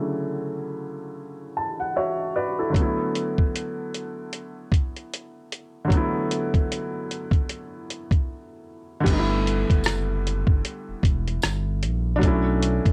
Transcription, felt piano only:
0, 0, Header, 1, 2, 480
1, 0, Start_track
1, 0, Key_signature, 2, "major"
1, 0, Tempo, 789474
1, 1668, Time_signature, 4, 2, 24, 8
1, 7859, End_track
2, 0, Start_track
2, 0, Title_t, "Felt piano"
2, 0, Program_c, 0, 0
2, 0, Control_c, 0, 64, 127
2, 0, Note_on_c, 0, 49, 57
2, 0, Note_on_c, 0, 50, 71
2, 0, Note_on_c, 0, 54, 62
2, 0, Note_on_c, 0, 57, 59
2, 0, Note_on_c, 0, 64, 82
2, 0, Note_on_c, 0, 69, 49
2, 0, Note_on_c, 0, 74, 56
2, 953, Note_on_c, 0, 81, 63
2, 1081, Note_off_c, 0, 81, 0
2, 1093, Note_on_c, 0, 78, 58
2, 1184, Note_off_c, 0, 78, 0
2, 1186, Note_off_c, 0, 64, 0
2, 1193, Note_on_c, 0, 76, 67
2, 1195, Note_on_c, 0, 73, 65
2, 1199, Note_on_c, 0, 66, 52
2, 1414, Note_off_c, 0, 76, 0
2, 1420, Note_off_c, 0, 73, 0
2, 1422, Note_off_c, 0, 66, 0
2, 1433, Note_off_c, 0, 74, 0
2, 1433, Note_on_c, 0, 71, 64
2, 1433, Note_on_c, 0, 74, 67
2, 1437, Note_on_c, 0, 66, 53
2, 1564, Note_off_c, 0, 71, 0
2, 1566, Note_off_c, 0, 66, 0
2, 1574, Note_off_c, 0, 69, 0
2, 1574, Note_on_c, 0, 69, 50
2, 1578, Note_on_c, 0, 64, 52
2, 1631, Note_off_c, 0, 50, 0
2, 1640, Note_off_c, 0, 54, 0
2, 1640, Note_on_c, 0, 50, 65
2, 1648, Note_off_c, 0, 57, 0
2, 1654, Note_off_c, 0, 74, 0
2, 1658, Note_off_c, 0, 49, 0
2, 1658, Note_on_c, 0, 54, 62
2, 1675, Control_c, 0, 64, 0
2, 1679, Note_on_c, 0, 57, 61
2, 1697, Note_on_c, 0, 59, 65
2, 1705, Note_off_c, 0, 64, 0
2, 1714, Note_on_c, 0, 64, 78
2, 1791, Control_c, 0, 64, 127
2, 1799, Note_off_c, 0, 69, 0
2, 3546, Note_off_c, 0, 50, 0
2, 3555, Note_on_c, 0, 50, 73
2, 3559, Note_off_c, 0, 54, 0
2, 3570, Note_off_c, 0, 57, 0
2, 3575, Note_on_c, 0, 54, 68
2, 3578, Note_off_c, 0, 59, 0
2, 3587, Note_off_c, 0, 64, 0
2, 3591, Note_on_c, 0, 57, 63
2, 3612, Note_on_c, 0, 59, 66
2, 3631, Note_on_c, 0, 64, 75
2, 5465, Note_off_c, 0, 50, 0
2, 5474, Note_on_c, 0, 50, 76
2, 5477, Note_off_c, 0, 54, 0
2, 5485, Note_off_c, 0, 57, 0
2, 5495, Note_on_c, 0, 55, 77
2, 5496, Note_off_c, 0, 59, 0
2, 5505, Note_off_c, 0, 64, 0
2, 5511, Note_on_c, 0, 57, 69
2, 5517, Control_c, 0, 64, 0
2, 5530, Note_on_c, 0, 59, 69
2, 5546, Note_on_c, 0, 63, 66
2, 5574, Note_off_c, 0, 63, 0
2, 5588, Note_on_c, 0, 64, 83
2, 5616, Control_c, 0, 64, 127
2, 7387, Note_off_c, 0, 50, 0
2, 7393, Note_on_c, 0, 62, 77
2, 7397, Note_off_c, 0, 55, 0
2, 7405, Note_off_c, 0, 57, 0
2, 7410, Note_on_c, 0, 54, 72
2, 7415, Note_off_c, 0, 59, 0
2, 7429, Note_on_c, 0, 57, 70
2, 7437, Control_c, 0, 64, 0
2, 7444, Note_off_c, 0, 64, 0
2, 7446, Note_on_c, 0, 61, 71
2, 7463, Note_on_c, 0, 64, 79
2, 7537, Control_c, 0, 64, 127
2, 7859, Note_off_c, 0, 54, 0
2, 7859, Note_off_c, 0, 57, 0
2, 7859, Note_off_c, 0, 61, 0
2, 7859, Note_off_c, 0, 62, 0
2, 7859, Note_off_c, 0, 64, 0
2, 7859, End_track
0, 0, End_of_file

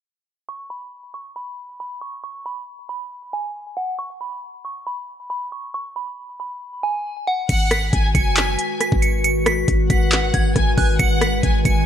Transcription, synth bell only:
0, 0, Header, 1, 2, 480
1, 0, Start_track
1, 0, Key_signature, 5, "minor"
1, 0, Tempo, 437956
1, 530, Time_signature, 4, 2, 24, 8
1, 12996, End_track
2, 0, Start_track
2, 0, Title_t, "Synth bell"
2, 0, Program_c, 0, 98
2, 533, Note_on_c, 0, 85, 100
2, 721, Note_off_c, 0, 85, 0
2, 769, Note_on_c, 0, 83, 80
2, 958, Note_off_c, 0, 83, 0
2, 1249, Note_on_c, 0, 85, 73
2, 1439, Note_off_c, 0, 85, 0
2, 1490, Note_on_c, 0, 83, 75
2, 1941, Note_off_c, 0, 83, 0
2, 1973, Note_on_c, 0, 83, 78
2, 2161, Note_off_c, 0, 83, 0
2, 2208, Note_on_c, 0, 85, 75
2, 2398, Note_off_c, 0, 85, 0
2, 2450, Note_on_c, 0, 85, 100
2, 2639, Note_off_c, 0, 85, 0
2, 2693, Note_on_c, 0, 83, 82
2, 2881, Note_off_c, 0, 83, 0
2, 3169, Note_on_c, 0, 83, 79
2, 3621, Note_off_c, 0, 83, 0
2, 3652, Note_on_c, 0, 80, 78
2, 4103, Note_off_c, 0, 80, 0
2, 4129, Note_on_c, 0, 78, 80
2, 4319, Note_off_c, 0, 78, 0
2, 4369, Note_on_c, 0, 85, 99
2, 4558, Note_off_c, 0, 85, 0
2, 4611, Note_on_c, 0, 83, 80
2, 4800, Note_off_c, 0, 83, 0
2, 5092, Note_on_c, 0, 85, 83
2, 5281, Note_off_c, 0, 85, 0
2, 5333, Note_on_c, 0, 83, 83
2, 5783, Note_off_c, 0, 83, 0
2, 5809, Note_on_c, 0, 83, 78
2, 5998, Note_off_c, 0, 83, 0
2, 6051, Note_on_c, 0, 85, 80
2, 6240, Note_off_c, 0, 85, 0
2, 6294, Note_on_c, 0, 85, 106
2, 6482, Note_off_c, 0, 85, 0
2, 6532, Note_on_c, 0, 83, 91
2, 6720, Note_off_c, 0, 83, 0
2, 7012, Note_on_c, 0, 83, 74
2, 7462, Note_off_c, 0, 83, 0
2, 7489, Note_on_c, 0, 80, 84
2, 7941, Note_off_c, 0, 80, 0
2, 7972, Note_on_c, 0, 78, 79
2, 8161, Note_off_c, 0, 78, 0
2, 8212, Note_on_c, 0, 97, 106
2, 8400, Note_off_c, 0, 97, 0
2, 8450, Note_on_c, 0, 95, 87
2, 8639, Note_off_c, 0, 95, 0
2, 8929, Note_on_c, 0, 97, 73
2, 9119, Note_off_c, 0, 97, 0
2, 9170, Note_on_c, 0, 95, 78
2, 9621, Note_off_c, 0, 95, 0
2, 9654, Note_on_c, 0, 95, 82
2, 9841, Note_off_c, 0, 95, 0
2, 9888, Note_on_c, 0, 97, 80
2, 10078, Note_off_c, 0, 97, 0
2, 10131, Note_on_c, 0, 97, 103
2, 10320, Note_off_c, 0, 97, 0
2, 10372, Note_on_c, 0, 95, 86
2, 10560, Note_off_c, 0, 95, 0
2, 10849, Note_on_c, 0, 95, 79
2, 11301, Note_off_c, 0, 95, 0
2, 11331, Note_on_c, 0, 92, 81
2, 11782, Note_off_c, 0, 92, 0
2, 11810, Note_on_c, 0, 90, 80
2, 11999, Note_off_c, 0, 90, 0
2, 12049, Note_on_c, 0, 97, 104
2, 12239, Note_off_c, 0, 97, 0
2, 12293, Note_on_c, 0, 95, 85
2, 12481, Note_off_c, 0, 95, 0
2, 12773, Note_on_c, 0, 97, 89
2, 12961, Note_off_c, 0, 97, 0
2, 12996, End_track
0, 0, End_of_file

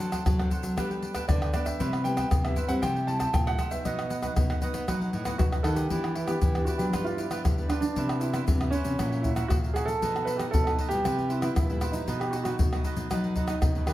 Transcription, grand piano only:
0, 0, Header, 1, 2, 480
1, 0, Start_track
1, 0, Tempo, 513699
1, 1686, Time_signature, 4, 2, 24, 8
1, 13019, End_track
2, 0, Start_track
2, 0, Title_t, "Grand piano"
2, 0, Program_c, 0, 0
2, 0, Note_on_c, 0, 81, 88
2, 201, Note_off_c, 0, 81, 0
2, 1196, Note_on_c, 0, 74, 83
2, 1420, Note_off_c, 0, 74, 0
2, 1434, Note_on_c, 0, 74, 76
2, 1547, Note_on_c, 0, 76, 86
2, 1551, Note_off_c, 0, 74, 0
2, 1908, Note_on_c, 0, 79, 88
2, 1927, Note_off_c, 0, 76, 0
2, 2011, Note_off_c, 0, 79, 0
2, 2025, Note_on_c, 0, 79, 83
2, 2282, Note_off_c, 0, 79, 0
2, 2286, Note_on_c, 0, 76, 81
2, 2507, Note_on_c, 0, 78, 92
2, 2532, Note_off_c, 0, 76, 0
2, 2554, Note_off_c, 0, 78, 0
2, 2636, Note_on_c, 0, 79, 100
2, 2863, Note_off_c, 0, 79, 0
2, 2871, Note_on_c, 0, 81, 97
2, 2918, Note_off_c, 0, 81, 0
2, 2984, Note_on_c, 0, 81, 97
2, 3105, Note_off_c, 0, 81, 0
2, 3116, Note_on_c, 0, 79, 98
2, 3163, Note_off_c, 0, 79, 0
2, 3242, Note_on_c, 0, 78, 99
2, 3466, Note_off_c, 0, 78, 0
2, 3467, Note_on_c, 0, 76, 83
2, 3598, Note_on_c, 0, 75, 80
2, 3599, Note_off_c, 0, 76, 0
2, 5002, Note_off_c, 0, 75, 0
2, 5029, Note_on_c, 0, 66, 85
2, 5085, Note_off_c, 0, 66, 0
2, 5260, Note_on_c, 0, 69, 88
2, 5307, Note_off_c, 0, 69, 0
2, 5368, Note_on_c, 0, 67, 79
2, 5719, Note_off_c, 0, 67, 0
2, 5737, Note_on_c, 0, 64, 79
2, 5853, Note_on_c, 0, 67, 83
2, 5860, Note_off_c, 0, 64, 0
2, 6213, Note_on_c, 0, 66, 71
2, 6238, Note_off_c, 0, 67, 0
2, 6260, Note_off_c, 0, 66, 0
2, 6330, Note_on_c, 0, 67, 87
2, 6388, Note_off_c, 0, 67, 0
2, 6582, Note_on_c, 0, 65, 83
2, 6694, Note_on_c, 0, 64, 73
2, 6703, Note_off_c, 0, 65, 0
2, 7153, Note_off_c, 0, 64, 0
2, 7178, Note_on_c, 0, 62, 81
2, 7280, Note_off_c, 0, 62, 0
2, 7294, Note_on_c, 0, 62, 87
2, 7642, Note_off_c, 0, 62, 0
2, 7653, Note_on_c, 0, 64, 82
2, 8113, Note_off_c, 0, 64, 0
2, 8134, Note_on_c, 0, 61, 99
2, 8611, Note_on_c, 0, 64, 85
2, 8644, Note_off_c, 0, 61, 0
2, 8850, Note_off_c, 0, 64, 0
2, 8861, Note_on_c, 0, 66, 92
2, 8918, Note_off_c, 0, 66, 0
2, 9097, Note_on_c, 0, 68, 89
2, 9208, Note_on_c, 0, 69, 100
2, 9221, Note_off_c, 0, 68, 0
2, 9577, Note_on_c, 0, 71, 90
2, 9598, Note_off_c, 0, 69, 0
2, 9674, Note_off_c, 0, 71, 0
2, 9678, Note_on_c, 0, 69, 67
2, 9686, Note_on_c, 0, 67, 84
2, 9717, Note_off_c, 0, 69, 0
2, 9733, Note_off_c, 0, 67, 0
2, 9819, Note_on_c, 0, 69, 100
2, 9927, Note_off_c, 0, 69, 0
2, 9941, Note_on_c, 0, 69, 82
2, 9998, Note_off_c, 0, 69, 0
2, 10171, Note_on_c, 0, 67, 109
2, 10543, Note_on_c, 0, 64, 72
2, 10560, Note_off_c, 0, 67, 0
2, 10641, Note_off_c, 0, 64, 0
2, 10655, Note_on_c, 0, 64, 99
2, 11136, Note_on_c, 0, 63, 79
2, 11166, Note_off_c, 0, 64, 0
2, 11374, Note_off_c, 0, 63, 0
2, 11397, Note_on_c, 0, 67, 88
2, 11499, Note_on_c, 0, 66, 77
2, 11513, Note_off_c, 0, 67, 0
2, 11546, Note_off_c, 0, 66, 0
2, 11619, Note_on_c, 0, 66, 78
2, 12079, Note_off_c, 0, 66, 0
2, 12475, Note_on_c, 0, 63, 73
2, 12928, Note_off_c, 0, 63, 0
2, 12952, Note_on_c, 0, 67, 75
2, 13019, Note_off_c, 0, 67, 0
2, 13019, End_track
0, 0, End_of_file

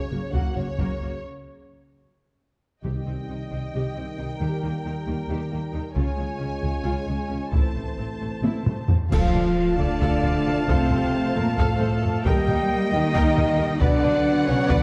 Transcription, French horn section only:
0, 0, Header, 1, 2, 480
1, 0, Start_track
1, 0, Tempo, 453172
1, 1319, Time_signature, 7, 3, 24, 8
1, 3489, Tempo, 444115
1, 7329, Tempo, 453858
1, 10209, Tempo, 446097
1, 15865, End_track
2, 0, Start_track
2, 0, Title_t, "French horn section"
2, 0, Program_c, 0, 60
2, 0, Note_on_c, 0, 61, 74
2, 352, Note_off_c, 0, 61, 0
2, 357, Note_on_c, 0, 66, 61
2, 591, Note_on_c, 0, 61, 64
2, 596, Note_off_c, 0, 66, 0
2, 1315, Note_off_c, 0, 61, 0
2, 3005, Note_on_c, 0, 60, 40
2, 3007, Note_on_c, 0, 67, 41
2, 4645, Note_off_c, 0, 60, 0
2, 4683, Note_on_c, 0, 58, 44
2, 6322, Note_off_c, 0, 67, 0
2, 6363, Note_off_c, 0, 58, 0
2, 6373, Note_on_c, 0, 65, 59
2, 6376, Note_on_c, 0, 61, 55
2, 8016, Note_off_c, 0, 65, 0
2, 8017, Note_off_c, 0, 61, 0
2, 8041, Note_on_c, 0, 60, 43
2, 8043, Note_on_c, 0, 64, 47
2, 9490, Note_off_c, 0, 60, 0
2, 9491, Note_off_c, 0, 64, 0
2, 9728, Note_on_c, 0, 65, 103
2, 10403, Note_off_c, 0, 65, 0
2, 10429, Note_on_c, 0, 62, 92
2, 11399, Note_on_c, 0, 60, 105
2, 11402, Note_off_c, 0, 62, 0
2, 12113, Note_off_c, 0, 60, 0
2, 12126, Note_on_c, 0, 58, 86
2, 12365, Note_off_c, 0, 58, 0
2, 12366, Note_on_c, 0, 57, 97
2, 13096, Note_off_c, 0, 57, 0
2, 13100, Note_on_c, 0, 67, 112
2, 13820, Note_off_c, 0, 67, 0
2, 13828, Note_on_c, 0, 63, 113
2, 14779, Note_off_c, 0, 63, 0
2, 14782, Note_on_c, 0, 62, 121
2, 15475, Note_on_c, 0, 61, 112
2, 15481, Note_off_c, 0, 62, 0
2, 15719, Note_on_c, 0, 62, 122
2, 15721, Note_off_c, 0, 61, 0
2, 15865, Note_off_c, 0, 62, 0
2, 15865, End_track
0, 0, End_of_file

